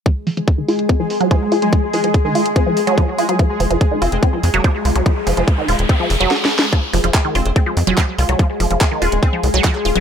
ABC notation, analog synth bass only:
X:1
M:4/4
L:1/16
Q:1/4=144
K:Fphr
V:1 name="Analog synth bass" clef=bass
z16 | z16 | z2 F,,, F,,, z2 F,,, F,,, z2 F,, F,,, z2 C,, C,, | z2 F,,, F,,, z2 E,,, E,,, z2 F,,, F,,, z4 |
z2 F,,, F,,, z2 F,,, F,,, z2 F,, F,,, z2 C,, C,, | z2 F,,, F,,, z2 E,,, E,,, z2 C,, C,, z2 E,,, E,,, |]